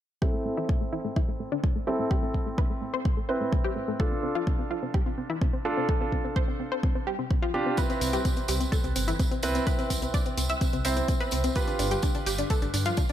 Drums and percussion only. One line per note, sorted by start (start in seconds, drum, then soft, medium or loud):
0.22 kick loud
0.69 kick loud
1.16 kick loud
1.64 kick loud
2.11 kick loud
2.34 kick medium
2.58 kick loud
3.05 kick loud
3.52 kick loud
4.00 kick loud
4.47 kick loud
4.94 kick loud
5.41 kick loud
5.89 kick loud
6.12 kick medium
6.36 kick loud
6.83 kick loud
7.31 kick loud
7.77 kick loud
7.77 closed hi-hat soft
7.77 tambourine soft
7.90 closed hi-hat soft
7.90 tambourine soft
8.01 open hi-hat medium
8.01 tambourine medium
8.13 closed hi-hat soft
8.13 tambourine soft
8.25 kick loud
8.25 closed hi-hat soft
8.25 tambourine medium
8.37 closed hi-hat soft
8.37 tambourine soft
8.48 open hi-hat loud
8.48 tambourine medium
8.61 closed hi-hat soft
8.61 tambourine soft
8.72 kick loud
8.72 closed hi-hat soft
8.72 tambourine soft
8.84 closed hi-hat soft
8.84 tambourine soft
8.96 open hi-hat loud
8.96 tambourine loud
9.08 closed hi-hat soft
9.08 tambourine soft
9.19 kick loud
9.19 closed hi-hat soft
9.19 tambourine medium
9.31 closed hi-hat soft
9.31 tambourine soft
9.43 open hi-hat loud
9.43 tambourine medium
9.55 closed hi-hat soft
9.55 tambourine soft
9.67 kick loud
9.67 closed hi-hat medium
9.67 tambourine medium
9.79 closed hi-hat soft
9.79 tambourine soft
9.90 kick medium
9.90 open hi-hat loud
9.90 tambourine medium
10.02 closed hi-hat soft
10.02 tambourine soft
10.14 kick loud
10.14 closed hi-hat soft
10.14 tambourine soft
10.26 closed hi-hat soft
10.26 tambourine soft
10.37 open hi-hat loud
10.37 tambourine medium
10.50 closed hi-hat medium
10.61 kick loud
10.61 closed hi-hat medium
10.61 tambourine soft
10.73 closed hi-hat soft
10.73 tambourine soft
10.85 open hi-hat loud
10.85 tambourine medium
10.96 closed hi-hat soft
10.96 tambourine soft
11.08 kick loud
11.08 closed hi-hat medium
11.08 tambourine soft
11.20 closed hi-hat soft
11.20 tambourine soft
11.31 open hi-hat loud
11.31 tambourine medium
11.44 closed hi-hat medium
11.44 tambourine soft
11.56 kick loud
11.56 closed hi-hat medium
11.56 tambourine soft
11.68 closed hi-hat soft
11.68 tambourine soft
11.79 open hi-hat loud
11.79 tambourine medium
11.91 closed hi-hat medium
11.91 tambourine soft
12.02 kick loud
12.02 closed hi-hat medium
12.02 tambourine medium
12.15 closed hi-hat soft
12.15 tambourine soft
12.26 open hi-hat loud
12.26 tambourine medium
12.38 closed hi-hat medium
12.38 tambourine soft
12.50 kick loud
12.50 closed hi-hat medium
12.50 tambourine soft
12.62 closed hi-hat soft
12.62 tambourine soft
12.74 open hi-hat medium
12.74 tambourine medium
12.85 closed hi-hat soft
12.85 tambourine soft
12.97 kick loud
12.97 closed hi-hat medium
12.97 tambourine soft
13.09 closed hi-hat soft
13.09 tambourine soft